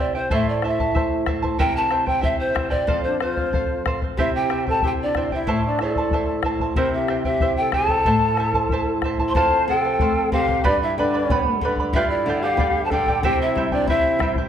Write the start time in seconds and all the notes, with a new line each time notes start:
Already playing: C3
0.00 E4 C5 D5 E5 G5
0.15 E4 C5 G5
0.30 A2 E4 A4 C5 E5 A5, bombo low
0.48 D5
0.62 E4 C5 E5 A5, bombo rim
0.66 E5
0.79 E4 C5 A5, bombo low
0.95 E4 C5 E5 A5, bombo low
1.26 E4 C5 E5 A5, bombo rim, bombo low
1.42 E4 C5 A5, bombo low
1.59 C3 E4 A#4 C5 E5 G5, bombo low
1.76 A5
1.91 E4 C5 E5 G5, bombo rim
2.06 E4 C5 G5, bombo low
2.21 E4 C5 E5 G5, bombo low
2.39 C5
2.54 E4 C5 E5 G5, bombo rim, bombo low
2.69 E4 C5 D5 G5, bombo low
2.87 F2 A4 C5 F5, bombo low
3.03 D4 C5
3.19 F4 A4 C5 F5, bombo rim
3.36 C5 F5, bombo low
3.53 A4 C5 F5, bombo low
3.85 A4 C5 F5, bombo rim, bombo low
4.01 C5 F5, bombo low
4.17 C3 E4 G4 C5 E5 G5, bombo low
4.34 G4 G5
4.50 E4 C5 E5 G5, bombo rim
4.67 E4 A4 C5 G5 A5, bombo low
4.82 E4 G4 C5 E5 G5, bombo low
4.86 G5
5.02 D4 D5
5.15 E4 C5 E5 G5, bombo rim, bombo low
5.31 E4 C5 E5 G5, bombo low
5.47 A2 E4 A4 C5 E5 A5, bombo low
5.65 D4 D5
5.79 E4 A4 C5 D5 E5 A5, bombo rim
5.95 E4 C5 A5, bombo low
6.11 E4 C5 E5 A5, bombo low
6.43 E4 C5 E5 A5, bombo rim, bombo low
6.59 E4 C5 A5, bombo low
6.75 C3 E4 A#4 C5 E5 G5, bombo low
6.93 G4 E5
7.08 E4 C5 E5 G5, bombo rim
7.24 E4 G4 C5 E5 G5, bombo low
7.40 E4 C5 E5 G5, bombo low
7.56 A4 G5
7.72 E4 A4 C5 E5 G5 A5, bombo rim, bombo low
7.88 E4 C5 G5, bombo low
8.05 A2 E4 A4 C5 E5 A5, bombo low
8.37 E4 C5 E5 A5, bombo rim
8.53 E4 C5 A5, bombo low
8.69 E4 C5 E5, bombo low
8.73 A5
9.02 E4 C5 E5 A5, bombo rim, bombo low
9.18 E4 C5 A5, bombo low
9.28 C5 C6
9.34 F2 A4 C5 F5 A5, bombo low
9.68 C3 A4 C5 F5 G5
9.85 C5 F5
9.99 A3 A4 C5 F5, bombo low
10.31 C3 G4 A4 C5 F5, bombo low
10.48 C5 F5, bombo low
10.64 G2 D4 G4 B4 D5 G5 B5, bombo low
10.81 E4 E5
10.97 D3 D4 B4 D5 G5 B5
11.14 B4 D5 B5
11.29 B3 B4 D5 G5 B5, bombo low
11.61 D3 B4 G5, bombo low
11.65 D5 B5
11.77 D5 B5, bombo low
11.81 B4
11.93 G2 F4 G4 B4 D5 E5 F5 G5, bombo low
12.09 E4 D5
12.26 D3 G4 D5 F5 G5
12.41 G4 F5 G5
12.45 G4 D5
12.57 B3 G4 D5 F5 G5, bombo low
12.84 C5 A5
12.90 D3 G4 A4 D5 F5 G5, bombo low
13.07 G4 D5 G5, bombo low
13.23 C3 E4 G4 C5 E5 G5, bombo low
13.40 E4 E5
13.55 G3 E4 C5 E5 G5, bombo low
13.71 D4 E4 C5 D5 G5, bombo low
13.86 E4 C5 E5, bombo low
13.90 E4 G5
14.19 G3 E4 C5 E5 G5, bombo rim, bombo low
14.35 E4 C5 G5, bombo low